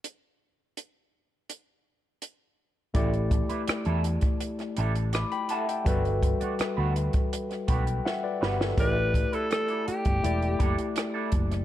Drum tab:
HH |x---x---x---x---|xxxxxxxxxxxxxxxx|xxxxx-xxxxxx----|x-xxxxxxxxxxx-xx|
SD |----------------|----r----r--r---|----r----r--o-oo|----r-------r--r|
BD |----------------|o-o----o--------|o-o----o--o-----|o-o----o--o---o-|